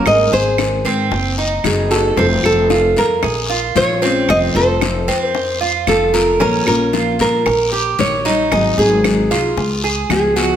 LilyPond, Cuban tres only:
\new Staff \with { instrumentName = "Cuban tres" } { \time 4/4 \key bes \minor \tempo 4 = 114 bes8 aes'4 c'4 ees'4 a'8 | c'4 f'4 aes'8 f'4 c'8~ | c'8 a'4 c'4 f'4 bes'8 | des'4 f'4 bes'8 g'4 ees'8~ |
ees'8 aes'4 f'4 aes'4 ges'8 | }